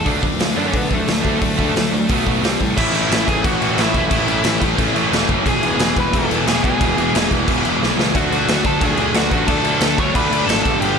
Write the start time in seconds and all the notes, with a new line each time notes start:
0.05 D2 D3 F#3 A3 D4, kick, open hi-hat
0.22 D2 D3 F#3 A3, kick
0.39 D2 D3 F#3 A3, snare, open hi-hat
0.55 F#2 D3 F#3 A3 D4 D5
0.67 C#4 C#5
0.72 D3 F#3 A3, kick, open hi-hat
0.76 B3 B4
0.89 D2 D3 F#3 A3, kick
0.93 A3 A4
1.06 D2 D3 F#3 A3, snare, open hi-hat
1.21 D2 D3 F#3 A3 D4, kick
1.26 A3
1.39 D2 D3 F#3 A3, kick, open hi-hat
1.43 A3 D4
1.57 D2 D3 F#3 A3 D4, kick
1.74 D2 D3 F#3 A3, snare, open hi-hat
1.92 D2 D3 F#3 A3
2.09 B1 B2 F#3 B3, kick, open hi-hat
2.26 B1 B2 F#3 B3, kick
2.42 C2 C3 G3 C4, snare, open hi-hat
2.60 A2 C3 G3, kick
2.77 A1 A2 E3 A3 C#4 E4 E5, kick, crash
2.92 A1 A2 E3 A3 C#4 E4, crash
3.09 A1 A2 E3 A3 C#4 E4, snare, crash
3.27 A1 A2 E3 A3 C#4 E4 G#4 G#5, kick, crash
3.44 A1 A2 E3 A3 C#4 E4 F#4 F#5, kick, crash
3.60 A1 A2 E3 A3 C#4 E4, crash
3.77 A1 A2 E3 A3 C#4 E4 E5, snare, crash
3.94 E1 A2 E3 A3 C#4 E4, kick, crash
3.98 E5
4.11 A1 A2 E3 A3 C#4 E4, kick, crash
4.27 A1 A2 E3 A3 C#4 E4, crash
4.44 A1 A2 E3 A3 C#4 E4, snare, crash
4.61 A1 A2 E3 A3 C#4 E4, kick, crash
4.78 A1 A2 E3 A3 C#4 E4, kick, crash
4.95 A1 A2 E3 A3 C#4 E4, crash
5.11 E1 A2 E3 A3 C#4 E4, snare, crash
5.29 F#1 A2 E3 A3 C#4 E4, kick, crash
5.45 E1 E2 B2 E3 G#3 B3 E4 G#4, kick, crash
5.49 G#5
5.61 E1 E2 B2 E3 G#3 B3 E4, crash
5.78 E1 E2 B2 E3 G#3 B3 E4, snare, crash
5.95 E1 E2 B2 E3 G#3 B3 E4 B4, kick, crash
6.00 B5
6.13 E1 E2 B2 E3 G#3 B3 E4 A4 A5, kick, crash
6.29 E1 E2 B2 E3 G#3 B3 E4, crash
6.46 E1 E2 B2 E3 G#3 B3 E4 G#4 G#5, snare, crash
6.63 B1 E2 B2 E3 G#3 B3 E4 G#4 G#5, kick, crash
6.80 E1 E2 B2 E3 G#3 B3 E4, kick, crash
6.97 E1 E2 B2 E3 G#3 B3 E4, crash
7.13 E1 E2 B2 E3 G#3 B3 E4, snare, crash
7.31 E1 E2 B2 E3 G#3 B3 E4, kick, crash
7.47 E1 E2 B2 E3 G#3 B3 E4, kick, crash
7.64 E1 E2 B2 E3 G#3 B3 E4, crash
7.81 B1 E2 B2 E3 G#3 B3 E4, snare
7.98 C#2 E2 B2 E3 G#3 B3 E4, snare
8.15 D2 D3 F#3 A3 D4 F#4 F#5, kick, crash
8.31 D2 D3 F#3 A3 D4, crash
8.47 D2 D3 F#3 A3 D4, snare, crash
8.64 D2 D3 F#3 A3 D4 A4 A5, kick, crash
8.81 D2 D3 F#3 A3 D4 G#4 G#5, kick, crash
8.97 D2 D3 F#3 A3 D4, crash
9.13 D2 D3 F#3 A3 D4 F#5, snare, crash
9.18 F#4
9.30 A1 D3 F#3 A3 D4 F#4 F#5, kick, crash
9.47 D2 D3 F#3 A3 D4 A4 A5, kick, crash
9.63 D2 D3 F#3 A3 D4, crash
9.79 D2 D3 F#3, snare, crash
9.84 A3 D4
9.98 D2 D3 F#3 A3 D4 C#5 C#6, kick, crash
10.15 D2 D3 F#3 A3 D4 B5, kick, crash
10.19 B4
10.30 D2 D3 F#3 A3 D4, crash
10.46 G#1 D3 F#3 A3 D4 A4 A5, snare, crash
10.63 G1 G2 D3 G3 B3 D4 A4 A5, kick, crash
10.80 G1 G2 D3 G3 B3 D4 G4 G5, crash